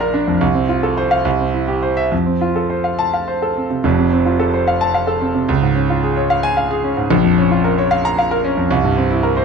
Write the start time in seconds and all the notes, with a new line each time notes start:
Already playing: A#1 D4 F4 D5 F5 A#5
0.00 A#4
0.14 D4
0.28 F2
0.41 C2
0.54 C4
0.69 F4
0.83 A4
0.97 C5
1.11 F5
1.25 C2
1.40 C4
1.54 E4
1.68 G4
1.83 C5
1.97 E5
2.12 F2
2.26 C4
2.41 F4
2.56 A4
2.70 C5
2.84 F5
2.99 A5
3.13 F5
3.28 C5
3.42 A4
3.57 C4
3.70 C3
3.84 F1 F2
3.99 C3
4.13 C4
4.26 F4
4.39 A4
4.54 C5
4.67 F5
4.81 A5
4.94 F5
5.07 A4
5.21 C4
5.35 C3
5.48 C#2
5.62 G#2
5.75 C#4
5.90 F4
6.03 G#4
6.17 C#5
6.30 F5
6.43 G#5
6.57 F5
6.71 G#4
6.84 C#4
6.97 G#2
7.11 A#1
7.24 F2
7.38 C#4
7.51 F4
7.64 A#4
7.78 C#5
7.91 F5
8.05 A#5
8.19 F5
8.31 A#4
8.44 C#4
8.57 F2
8.70 C2
8.84 G2
8.97 C4
9.11 E4
9.23 A#4
9.37 C5